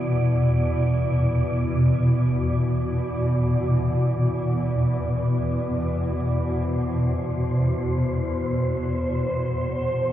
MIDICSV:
0, 0, Header, 1, 4, 480
1, 0, Start_track
1, 0, Tempo, 500000
1, 9720, End_track
2, 0, Start_track
2, 0, Title_t, "Synth texture"
2, 0, Program_c, 0, 99
2, 0, Note_on_c, 0, 74, 77
2, 6104, Note_on_c, 0, 72, 80
2, 6156, Note_off_c, 0, 74, 0
2, 9720, Note_off_c, 0, 72, 0
2, 9720, End_track
3, 0, Start_track
3, 0, Title_t, "Ambient pad"
3, 0, Program_c, 1, 92
3, 0, Note_on_c, 1, 52, 72
3, 0, Note_on_c, 1, 59, 64
3, 0, Note_on_c, 1, 64, 65
3, 6104, Note_on_c, 1, 40, 71
3, 6125, Note_off_c, 1, 52, 0
3, 6128, Note_off_c, 1, 59, 0
3, 7916, Note_on_c, 1, 72, 71
3, 8256, Note_off_c, 1, 64, 0
3, 9470, Note_on_c, 1, 67, 64
3, 9720, Note_off_c, 1, 40, 0
3, 9720, Note_off_c, 1, 67, 0
3, 9720, Note_off_c, 1, 72, 0
3, 9720, End_track
4, 0, Start_track
4, 0, Title_t, "Synth drone"
4, 0, Program_c, 2, 95
4, 0, Note_on_c, 2, 40, 62
4, 0, Note_on_c, 2, 47, 64
4, 9720, Note_off_c, 2, 40, 0
4, 9720, Note_off_c, 2, 47, 0
4, 9720, End_track
0, 0, End_of_file